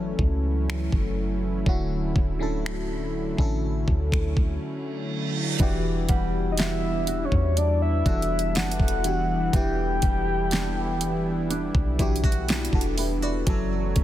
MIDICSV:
0, 0, Header, 1, 9, 480
1, 0, Start_track
1, 0, Tempo, 983607
1, 812, Time_signature, 4, 2, 24, 8
1, 6851, End_track
2, 0, Start_track
2, 0, Title_t, "Celesta"
2, 0, Program_c, 0, 8
2, 2972, Note_on_c, 0, 78, 81
2, 3481, Note_off_c, 0, 78, 0
2, 4410, Note_on_c, 0, 76, 55
2, 4920, Note_off_c, 0, 76, 0
2, 6851, End_track
3, 0, Start_track
3, 0, Title_t, "Soft synth lead"
3, 0, Program_c, 1, 80
3, 3182, Note_on_c, 1, 75, 65
3, 3218, Note_on_c, 1, 76, 101
3, 3226, Note_off_c, 1, 75, 0
3, 3536, Note_on_c, 1, 73, 87
3, 3543, Note_off_c, 1, 76, 0
3, 3696, Note_on_c, 1, 74, 97
3, 3703, Note_off_c, 1, 73, 0
3, 3814, Note_off_c, 1, 74, 0
3, 3816, Note_on_c, 1, 76, 93
3, 4177, Note_on_c, 1, 78, 115
3, 4185, Note_off_c, 1, 76, 0
3, 4657, Note_on_c, 1, 79, 127
3, 4665, Note_off_c, 1, 78, 0
3, 5615, Note_off_c, 1, 79, 0
3, 6851, End_track
4, 0, Start_track
4, 0, Title_t, "FM electric piano"
4, 0, Program_c, 2, 5
4, 0, Control_c, 2, 64, 127
4, 0, Note_on_c, 2, 54, 86
4, 0, Note_on_c, 2, 61, 82
4, 0, Note_on_c, 2, 64, 79
4, 0, Note_on_c, 2, 69, 98
4, 369, Note_off_c, 2, 54, 0
4, 372, Note_off_c, 2, 61, 0
4, 374, Note_off_c, 2, 64, 0
4, 377, Note_off_c, 2, 69, 0
4, 810, Note_on_c, 2, 50, 80
4, 814, Note_on_c, 2, 61, 70
4, 817, Control_c, 2, 64, 0
4, 819, Note_on_c, 2, 64, 72
4, 824, Note_on_c, 2, 66, 95
4, 915, Control_c, 2, 64, 127
4, 1051, Note_off_c, 2, 50, 0
4, 1053, Note_off_c, 2, 61, 0
4, 1055, Note_off_c, 2, 64, 0
4, 1058, Note_off_c, 2, 66, 0
4, 1168, Note_on_c, 2, 50, 79
4, 1173, Note_on_c, 2, 61, 73
4, 1178, Note_on_c, 2, 64, 67
4, 1184, Note_on_c, 2, 69, 89
4, 1489, Note_off_c, 2, 50, 0
4, 1492, Note_off_c, 2, 61, 0
4, 1495, Note_off_c, 2, 64, 0
4, 1498, Note_off_c, 2, 69, 0
4, 1646, Note_on_c, 2, 50, 90
4, 1652, Note_on_c, 2, 61, 80
4, 1656, Note_on_c, 2, 64, 77
4, 1661, Note_on_c, 2, 69, 96
4, 2288, Note_off_c, 2, 50, 0
4, 2291, Note_off_c, 2, 61, 0
4, 2293, Note_off_c, 2, 64, 0
4, 2296, Note_off_c, 2, 69, 0
4, 2729, Note_on_c, 2, 52, 92
4, 2734, Note_on_c, 2, 62, 80
4, 2737, Control_c, 2, 64, 0
4, 2739, Note_on_c, 2, 66, 83
4, 2745, Note_on_c, 2, 67, 99
4, 2811, Control_c, 2, 64, 127
4, 3370, Note_off_c, 2, 52, 0
4, 3372, Note_off_c, 2, 62, 0
4, 3375, Note_off_c, 2, 66, 0
4, 3378, Note_off_c, 2, 67, 0
4, 3931, Note_on_c, 2, 52, 71
4, 3935, Note_on_c, 2, 62, 65
4, 3940, Note_on_c, 2, 66, 63
4, 3946, Note_on_c, 2, 69, 78
4, 4251, Note_off_c, 2, 52, 0
4, 4253, Note_off_c, 2, 62, 0
4, 4256, Note_off_c, 2, 66, 0
4, 4259, Note_off_c, 2, 69, 0
4, 4411, Note_on_c, 2, 52, 65
4, 4416, Note_on_c, 2, 62, 59
4, 4421, Note_on_c, 2, 66, 56
4, 4426, Note_on_c, 2, 67, 75
4, 4571, Note_off_c, 2, 52, 0
4, 4574, Note_off_c, 2, 62, 0
4, 4576, Note_off_c, 2, 66, 0
4, 4579, Note_off_c, 2, 67, 0
4, 4651, Note_on_c, 2, 52, 76
4, 4655, Note_on_c, 2, 62, 72
4, 4661, Note_on_c, 2, 64, 68
4, 4666, Note_on_c, 2, 67, 83
4, 5291, Note_off_c, 2, 52, 0
4, 5293, Note_off_c, 2, 62, 0
4, 5296, Note_off_c, 2, 64, 0
4, 5298, Note_off_c, 2, 67, 0
4, 5850, Note_on_c, 2, 52, 81
4, 5854, Note_on_c, 2, 62, 81
4, 5860, Note_on_c, 2, 66, 75
4, 5865, Note_on_c, 2, 67, 96
4, 6093, Note_off_c, 2, 67, 0
4, 6096, Note_off_c, 2, 66, 0
4, 6099, Note_on_c, 2, 67, 66
4, 6102, Note_on_c, 2, 64, 50
4, 6170, Note_off_c, 2, 52, 0
4, 6173, Note_off_c, 2, 62, 0
4, 6210, Note_off_c, 2, 67, 0
4, 6211, Note_off_c, 2, 64, 0
4, 6219, Note_on_c, 2, 69, 72
4, 6221, Note_on_c, 2, 66, 60
4, 6330, Note_off_c, 2, 69, 0
4, 6331, Note_off_c, 2, 66, 0
4, 6338, Note_on_c, 2, 71, 68
4, 6341, Note_on_c, 2, 67, 58
4, 6449, Note_off_c, 2, 71, 0
4, 6451, Note_off_c, 2, 67, 0
4, 6457, Note_on_c, 2, 74, 69
4, 6461, Note_on_c, 2, 71, 54
4, 6570, Note_on_c, 2, 54, 91
4, 6574, Note_on_c, 2, 61, 81
4, 6578, Control_c, 2, 64, 0
4, 6580, Note_on_c, 2, 64, 79
4, 6586, Note_on_c, 2, 69, 101
4, 6666, Control_c, 2, 64, 127
4, 6683, Note_off_c, 2, 74, 0
4, 6685, Note_off_c, 2, 71, 0
4, 6851, Note_off_c, 2, 54, 0
4, 6851, Note_off_c, 2, 61, 0
4, 6851, Note_off_c, 2, 64, 0
4, 6851, Note_off_c, 2, 69, 0
4, 6851, End_track
5, 0, Start_track
5, 0, Title_t, "Nylon-string guitar"
5, 0, Program_c, 3, 24
5, 2731, Note_on_c, 3, 52, 83
5, 2972, Note_on_c, 3, 55, 61
5, 3211, Note_on_c, 3, 62, 63
5, 3453, Note_on_c, 3, 66, 62
5, 3686, Note_off_c, 3, 62, 0
5, 3692, Note_on_c, 3, 62, 65
5, 3932, Note_off_c, 3, 66, 0
5, 3934, Note_on_c, 3, 66, 65
5, 4167, Note_off_c, 3, 62, 0
5, 4173, Note_on_c, 3, 62, 59
5, 4412, Note_off_c, 3, 66, 0
5, 4413, Note_on_c, 3, 64, 67
5, 4524, Note_off_c, 3, 64, 0
5, 4647, Note_off_c, 3, 52, 0
5, 4653, Note_on_c, 3, 52, 89
5, 4887, Note_off_c, 3, 55, 0
5, 4893, Note_on_c, 3, 55, 59
5, 5126, Note_off_c, 3, 62, 0
5, 5132, Note_on_c, 3, 62, 63
5, 5607, Note_off_c, 3, 62, 0
5, 5613, Note_on_c, 3, 62, 69
5, 5853, Note_on_c, 3, 64, 70
5, 5973, Note_off_c, 3, 64, 0
5, 5973, Note_on_c, 3, 66, 58
5, 6087, Note_off_c, 3, 62, 0
5, 6093, Note_on_c, 3, 62, 63
5, 6330, Note_off_c, 3, 66, 0
5, 6332, Note_on_c, 3, 64, 66
5, 6453, Note_off_c, 3, 64, 0
5, 6453, Note_on_c, 3, 66, 58
5, 6570, Note_off_c, 3, 55, 0
5, 6572, Note_on_c, 3, 54, 84
5, 6587, Note_off_c, 3, 52, 0
5, 6620, Note_off_c, 3, 62, 0
5, 6620, Note_off_c, 3, 66, 0
5, 6812, Note_on_c, 3, 61, 62
5, 6851, Note_off_c, 3, 54, 0
5, 6851, Note_off_c, 3, 61, 0
5, 6851, End_track
6, 0, Start_track
6, 0, Title_t, "Analog synth pad"
6, 0, Program_c, 4, 89
6, 0, Note_on_c, 4, 52, 74
6, 0, Note_on_c, 4, 54, 70
6, 0, Note_on_c, 4, 57, 70
6, 0, Note_on_c, 4, 61, 72
6, 0, Note_on_c, 4, 64, 85
6, 793, Note_off_c, 4, 52, 0
6, 814, Note_on_c, 4, 50, 75
6, 1753, Note_off_c, 4, 61, 0
6, 1770, Note_on_c, 4, 61, 69
6, 2712, Note_off_c, 4, 57, 0
6, 2713, Note_off_c, 4, 54, 0
6, 2713, Note_off_c, 4, 64, 0
6, 2714, Note_off_c, 4, 50, 0
6, 2721, Note_off_c, 4, 61, 0
6, 2732, Note_on_c, 4, 52, 78
6, 2732, Note_on_c, 4, 55, 74
6, 2732, Note_on_c, 4, 62, 71
6, 2733, Note_on_c, 4, 59, 74
6, 2733, Note_on_c, 4, 64, 85
6, 6552, Note_off_c, 4, 52, 0
6, 6552, Note_off_c, 4, 55, 0
6, 6553, Note_off_c, 4, 59, 0
6, 6553, Note_off_c, 4, 62, 0
6, 6553, Note_off_c, 4, 64, 0
6, 6573, Note_on_c, 4, 52, 80
6, 6573, Note_on_c, 4, 66, 84
6, 6574, Note_on_c, 4, 54, 70
6, 6575, Note_on_c, 4, 57, 68
6, 6575, Note_on_c, 4, 73, 70
6, 6851, Note_off_c, 4, 52, 0
6, 6851, Note_off_c, 4, 54, 0
6, 6851, Note_off_c, 4, 57, 0
6, 6851, Note_off_c, 4, 66, 0
6, 6851, Note_off_c, 4, 73, 0
6, 6851, End_track
7, 0, Start_track
7, 0, Title_t, "808-style bass"
7, 0, Program_c, 5, 38
7, 0, Note_on_c, 5, 30, 95
7, 73, Note_off_c, 5, 30, 0
7, 93, Note_on_c, 5, 37, 100
7, 438, Note_off_c, 5, 37, 0
7, 453, Note_on_c, 5, 30, 99
7, 798, Note_off_c, 5, 30, 0
7, 812, Note_on_c, 5, 26, 115
7, 1043, Note_off_c, 5, 26, 0
7, 1054, Note_on_c, 5, 26, 95
7, 1633, Note_off_c, 5, 26, 0
7, 1653, Note_on_c, 5, 33, 99
7, 1883, Note_off_c, 5, 33, 0
7, 1893, Note_on_c, 5, 38, 86
7, 2238, Note_off_c, 5, 38, 0
7, 2733, Note_on_c, 5, 28, 108
7, 2963, Note_off_c, 5, 28, 0
7, 2973, Note_on_c, 5, 28, 100
7, 3553, Note_off_c, 5, 28, 0
7, 3573, Note_on_c, 5, 40, 102
7, 3918, Note_off_c, 5, 40, 0
7, 3933, Note_on_c, 5, 28, 103
7, 4175, Note_on_c, 5, 30, 98
7, 4182, Note_off_c, 5, 28, 0
7, 4287, Note_off_c, 5, 30, 0
7, 4293, Note_on_c, 5, 28, 100
7, 4638, Note_off_c, 5, 28, 0
7, 4654, Note_on_c, 5, 28, 118
7, 4883, Note_off_c, 5, 28, 0
7, 4894, Note_on_c, 5, 28, 98
7, 5713, Note_off_c, 5, 28, 0
7, 5734, Note_on_c, 5, 35, 88
7, 6194, Note_off_c, 5, 35, 0
7, 6212, Note_on_c, 5, 28, 102
7, 6558, Note_off_c, 5, 28, 0
7, 6573, Note_on_c, 5, 30, 116
7, 6803, Note_off_c, 5, 30, 0
7, 6815, Note_on_c, 5, 30, 98
7, 6851, Note_off_c, 5, 30, 0
7, 6851, End_track
8, 0, Start_track
8, 0, Title_t, "Reverse cymbal"
8, 0, Program_c, 6, 119
8, 1772, Note_on_c, 6, 60, 84
8, 2732, Note_off_c, 6, 60, 0
8, 6851, End_track
9, 0, Start_track
9, 0, Title_t, "Drums"
9, 92, Note_on_c, 9, 36, 89
9, 141, Note_off_c, 9, 36, 0
9, 340, Note_on_c, 9, 26, 111
9, 389, Note_off_c, 9, 26, 0
9, 451, Note_on_c, 9, 36, 79
9, 500, Note_off_c, 9, 36, 0
9, 812, Note_on_c, 9, 36, 114
9, 861, Note_off_c, 9, 36, 0
9, 1053, Note_on_c, 9, 36, 88
9, 1101, Note_off_c, 9, 36, 0
9, 1299, Note_on_c, 9, 26, 108
9, 1348, Note_off_c, 9, 26, 0
9, 1652, Note_on_c, 9, 36, 86
9, 1701, Note_off_c, 9, 36, 0
9, 1892, Note_on_c, 9, 36, 93
9, 1941, Note_off_c, 9, 36, 0
9, 2012, Note_on_c, 9, 36, 85
9, 2018, Note_on_c, 9, 26, 63
9, 2061, Note_off_c, 9, 36, 0
9, 2067, Note_off_c, 9, 26, 0
9, 2131, Note_on_c, 9, 36, 83
9, 2180, Note_off_c, 9, 36, 0
9, 2731, Note_on_c, 9, 42, 74
9, 2732, Note_on_c, 9, 36, 117
9, 2780, Note_off_c, 9, 42, 0
9, 2781, Note_off_c, 9, 36, 0
9, 2970, Note_on_c, 9, 42, 54
9, 2973, Note_on_c, 9, 36, 91
9, 3019, Note_off_c, 9, 42, 0
9, 3021, Note_off_c, 9, 36, 0
9, 3209, Note_on_c, 9, 42, 69
9, 3219, Note_on_c, 9, 38, 113
9, 3257, Note_off_c, 9, 42, 0
9, 3268, Note_off_c, 9, 38, 0
9, 3451, Note_on_c, 9, 42, 65
9, 3500, Note_off_c, 9, 42, 0
9, 3572, Note_on_c, 9, 36, 92
9, 3621, Note_off_c, 9, 36, 0
9, 3694, Note_on_c, 9, 42, 55
9, 3742, Note_off_c, 9, 42, 0
9, 3932, Note_on_c, 9, 36, 92
9, 3933, Note_on_c, 9, 42, 43
9, 3981, Note_off_c, 9, 36, 0
9, 3981, Note_off_c, 9, 42, 0
9, 4013, Note_on_c, 9, 42, 48
9, 4062, Note_off_c, 9, 42, 0
9, 4094, Note_on_c, 9, 42, 55
9, 4143, Note_off_c, 9, 42, 0
9, 4173, Note_on_c, 9, 42, 61
9, 4181, Note_on_c, 9, 38, 120
9, 4222, Note_off_c, 9, 42, 0
9, 4230, Note_off_c, 9, 38, 0
9, 4253, Note_on_c, 9, 42, 66
9, 4292, Note_on_c, 9, 36, 78
9, 4302, Note_off_c, 9, 42, 0
9, 4334, Note_on_c, 9, 42, 70
9, 4341, Note_off_c, 9, 36, 0
9, 4382, Note_off_c, 9, 42, 0
9, 4413, Note_on_c, 9, 42, 70
9, 4462, Note_off_c, 9, 42, 0
9, 4652, Note_on_c, 9, 36, 120
9, 4653, Note_on_c, 9, 42, 74
9, 4701, Note_off_c, 9, 36, 0
9, 4702, Note_off_c, 9, 42, 0
9, 4890, Note_on_c, 9, 42, 58
9, 4893, Note_on_c, 9, 36, 92
9, 4939, Note_off_c, 9, 42, 0
9, 4942, Note_off_c, 9, 36, 0
9, 5130, Note_on_c, 9, 42, 64
9, 5140, Note_on_c, 9, 38, 118
9, 5178, Note_off_c, 9, 42, 0
9, 5188, Note_off_c, 9, 38, 0
9, 5372, Note_on_c, 9, 42, 61
9, 5421, Note_off_c, 9, 42, 0
9, 5615, Note_on_c, 9, 42, 53
9, 5663, Note_off_c, 9, 42, 0
9, 5732, Note_on_c, 9, 36, 102
9, 5781, Note_off_c, 9, 36, 0
9, 5852, Note_on_c, 9, 36, 93
9, 5852, Note_on_c, 9, 42, 45
9, 5901, Note_off_c, 9, 36, 0
9, 5901, Note_off_c, 9, 42, 0
9, 5932, Note_on_c, 9, 42, 49
9, 5972, Note_on_c, 9, 36, 91
9, 5981, Note_off_c, 9, 42, 0
9, 6012, Note_on_c, 9, 42, 56
9, 6020, Note_off_c, 9, 36, 0
9, 6061, Note_off_c, 9, 42, 0
9, 6093, Note_on_c, 9, 42, 62
9, 6101, Note_on_c, 9, 38, 120
9, 6141, Note_off_c, 9, 42, 0
9, 6149, Note_off_c, 9, 38, 0
9, 6172, Note_on_c, 9, 42, 63
9, 6212, Note_on_c, 9, 36, 79
9, 6221, Note_off_c, 9, 42, 0
9, 6252, Note_on_c, 9, 42, 69
9, 6260, Note_off_c, 9, 36, 0
9, 6301, Note_off_c, 9, 42, 0
9, 6332, Note_on_c, 9, 46, 78
9, 6381, Note_off_c, 9, 46, 0
9, 6572, Note_on_c, 9, 36, 124
9, 6572, Note_on_c, 9, 42, 71
9, 6621, Note_off_c, 9, 36, 0
9, 6621, Note_off_c, 9, 42, 0
9, 6811, Note_on_c, 9, 42, 54
9, 6813, Note_on_c, 9, 36, 96
9, 6851, Note_off_c, 9, 36, 0
9, 6851, Note_off_c, 9, 42, 0
9, 6851, End_track
0, 0, End_of_file